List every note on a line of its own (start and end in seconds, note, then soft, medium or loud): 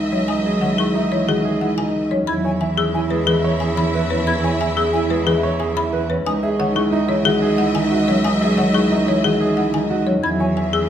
0.00 2.17 C#2 medium
0.00 0.61 D#3 medium
0.00 1.11 E3 medium
0.00 1.60 G#3 medium
0.00 0.28 C#4 medium
0.00 0.21 G#4 medium
0.00 2.07 D#5 medium
0.00 2.07 E5 medium
0.12 2.10 F#3 medium
0.12 0.34 C#4 medium
0.12 0.34 C#5 medium
0.28 2.29 C#4 medium
0.28 0.51 D#4 medium
0.28 0.50 G#5 medium
0.28 0.36 D#6 medium
0.46 0.67 G#4 medium
0.61 1.27 D#3 medium
0.61 0.84 C#5 medium
0.61 0.84 F#5 medium
0.78 1.00 E4 medium
0.78 1.00 G#4 medium
0.78 0.85 C#6 medium
0.95 1.17 D#4 medium
0.95 1.02 E5 medium
1.12 2.29 E3 medium
1.12 1.33 E4 medium
1.12 1.33 C#5 medium
1.28 1.77 D#3 medium
1.28 1.50 F#4 medium
1.28 1.50 G#4 medium
1.45 1.67 G#4 medium
1.61 3.09 G#3 medium
1.61 1.83 E4 medium
1.61 1.83 F#5 medium
1.78 2.30 D#3 medium
1.78 2.00 D#4 medium
1.78 2.00 G#5 medium
2.11 2.29 F#3 medium
2.11 2.33 C#4 medium
2.11 2.33 C#5 medium
2.27 6.15 E2 medium
2.27 6.18 E4 medium
2.27 6.05 E4 medium
2.27 2.50 E4 medium
2.27 6.05 E5 medium
2.27 2.49 B5 medium
2.27 2.34 G#6 medium
2.45 2.66 C#5 medium
2.45 2.51 G#5 loud
2.61 3.26 E3 medium
2.61 2.83 E5 medium
2.61 2.83 G#5 medium
2.78 3.59 C#4 medium
2.78 2.99 G#4 loud
2.78 2.99 G#4 medium
2.78 2.84 E6 medium
2.94 3.16 E4 loud
2.94 3.01 G#5 loud
3.10 5.09 G#3 medium
3.10 3.32 G#4 medium
3.10 3.32 B4 medium
3.27 3.75 E3 medium
3.27 3.49 G#4 loud
3.27 3.49 B4 medium
3.44 3.66 C#5 loud
3.60 4.76 C#4 medium
3.60 3.82 G#4 medium
3.60 3.82 G#5 medium
3.76 4.59 E3 medium
3.76 3.99 E4 medium
3.76 3.99 B5 medium
3.94 4.15 B4 medium
4.10 6.07 B3 medium
4.10 4.32 C#4 medium
4.10 4.32 B4 medium
4.27 4.49 E4 medium
4.27 8.17 G#4 medium
4.27 4.49 B5 medium
4.27 4.33 G#6 medium
4.44 4.65 C#5 medium
4.44 4.50 G#5 loud
4.60 5.25 E3 medium
4.60 4.82 E5 medium
4.60 4.82 G#5 medium
4.76 5.58 C#4 medium
4.76 4.98 G#4 loud
4.76 4.98 G#4 medium
4.76 4.83 E6 medium
4.93 5.15 E4 loud
4.93 4.99 G#5 loud
5.10 6.74 G#3 medium
5.10 5.31 G#4 medium
5.10 5.32 B4 medium
5.27 5.75 E3 loud
5.27 5.48 G#4 loud
5.27 5.48 B4 medium
5.43 5.65 C#5 loud
5.59 6.24 C#4 medium
5.59 5.81 G#4 medium
5.59 5.81 G#5 medium
5.76 6.27 E3 medium
5.76 5.98 E4 medium
5.76 5.98 B5 loud
5.93 6.14 B4 loud
6.09 6.27 B3 medium
6.09 6.31 C#4 medium
6.09 6.31 B4 medium
6.26 10.13 C#2 medium
6.26 8.24 C#4 loud
6.26 6.47 D#4 medium
6.26 10.03 D#5 medium
6.26 10.03 E5 medium
6.26 6.48 G#5 loud
6.26 6.32 D#6 medium
6.43 6.64 G#4 medium
6.43 6.49 E5 loud
6.59 7.24 D#3 medium
6.59 6.81 C#5 medium
6.59 6.81 F#5 medium
6.75 7.57 G#3 loud
6.75 6.97 E4 medium
6.75 6.97 G#4 loud
6.75 6.82 C#6 medium
6.92 7.14 D#4 loud
6.92 6.99 E5 medium
7.08 9.07 E3 medium
7.08 7.30 E4 medium
7.08 7.30 C#5 medium
7.25 7.73 D#3 medium
7.25 7.47 F#4 medium
7.25 7.47 G#4 loud
7.42 7.63 G#4 loud
7.58 8.73 G#3 medium
7.58 7.80 E4 medium
7.58 7.80 F#5 medium
7.74 8.56 D#3 medium
7.74 7.97 D#4 medium
7.74 7.96 G#5 medium
7.92 8.13 F#4 loud
8.08 10.05 F#3 medium
8.08 8.30 C#4 medium
8.08 8.30 C#5 medium
8.24 10.25 C#4 medium
8.24 8.46 D#4 medium
8.24 8.46 G#5 medium
8.24 8.31 D#6 medium
8.41 8.63 G#4 medium
8.41 8.48 E5 loud
8.57 9.23 D#3 medium
8.57 8.80 C#5 medium
8.57 8.79 F#5 medium
8.74 9.56 G#3 medium
8.74 8.96 E4 medium
8.74 8.96 G#4 medium
8.74 8.80 C#6 medium
8.91 9.13 D#4 loud
8.91 8.97 E5 medium
9.08 10.25 E3 medium
9.08 9.29 E4 medium
9.08 9.29 C#5 medium
9.24 9.73 D#3 loud
9.24 9.46 F#4 medium
9.24 9.46 G#4 loud
9.41 9.62 G#4 loud
9.57 10.89 G#3 medium
9.57 9.79 E4 medium
9.57 9.79 F#5 medium
9.74 10.25 D#3 medium
9.74 9.95 D#4 medium
9.74 9.95 G#5 medium
9.90 10.12 F#4 loud
10.06 10.25 F#3 medium
10.06 10.29 C#4 medium
10.06 10.28 C#5 medium
10.22 10.89 E2 medium
10.22 10.89 E4 medium
10.22 10.45 E4 medium
10.22 10.89 G#4 medium
10.22 10.89 E5 medium
10.22 10.45 B5 medium
10.22 10.29 G#6 medium
10.40 10.62 C#5 medium
10.40 10.46 G#5 medium
10.57 10.89 E3 medium
10.57 10.78 E5 medium
10.57 10.78 G#5 medium
10.73 10.89 C#4 medium
10.73 10.89 G#4 medium
10.73 10.80 E6 medium